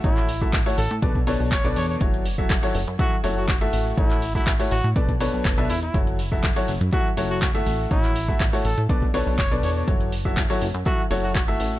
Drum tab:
HH |xxo-xooxx-o-oxo-|xxo-xooxx-o-xxo-|xxo-xooxxxo-oxox|xxo-xooxx-o-xxo-|
CP |-x--x-------x---|----x-------x---|-x--x-------x---|----x-------x---|
BD |o--oo---oo--o---|o--oo---o---o---|o--oo---oo--o---|o--oo---o---o---|

HH |xxo-xooxx-o-oxo-|xxo-xooxx-o-xxo-|
CP |-x--x-------x---|----x-------x---|
BD |o--oo---oo--o---|o--oo---o---o---|